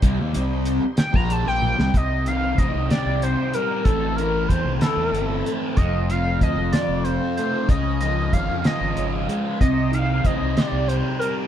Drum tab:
HH |x-x-x-x-x---|x-x-x-x-x-x-|x-x-x-x-x-x-|x-x-x-x-x-x-|
SD |------o----o|------o-----|------o-----|------o-----|
T1 |----------o-|------------|------------|------------|
BD |o------o----|o---o-------|o---o-------|o---o-------|

HH |x-x-x-x-x-x-|x-x-x-x-x-x-|
SD |------o-----|------o-----|
T1 |------------|------------|
BD |o---o-------|o---o-------|